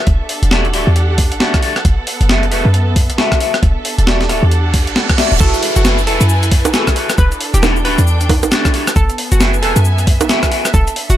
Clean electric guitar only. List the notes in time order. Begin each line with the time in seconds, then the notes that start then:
0.51 F#4 G4 A4 D5 E5
0.73 F#4 G4 A4 D5 E5
1.40 F#4 G4 A4 D5 E5
1.62 F#4 G4 A4 D5 E5
2.29 F#4 G#4 A4 B4 E5
2.51 F#4 G#4 A4 B4 E5
3.18 F#4 G#4 A4 B4 E5
3.40 F#4 G#4 A4 B4 E5
4.07 F#4 G4 A4 D5 E5
4.29 F#4 G4 A4 D5 E5
5.18 F#4 G4 A4 D5 E5
5.40 E4 F#4 G#4 A4 B4
5.84 E4 F#4 G#4 A4 B4
6.07 E4 F#4 G#4 A4 B4
6.73 E4 F#4 G#4 A4 B4
6.95 E4 F#4 G#4 A4 B4
7.62 D4 E4 F#4 G4 A4
7.85 D4 E4 F#4 G4 A4
8.51 D4 E4 F#4 G4 A4
8.73 D4 E4 F#4 G4 A4
9.40 E4 F#4 G#4 A4 B4
9.62 E4 F#4 G#4 A4 B4
10.29 E4 F#4 G#4 A4 B4
10.51 E4 F#4 G#4 A4 B4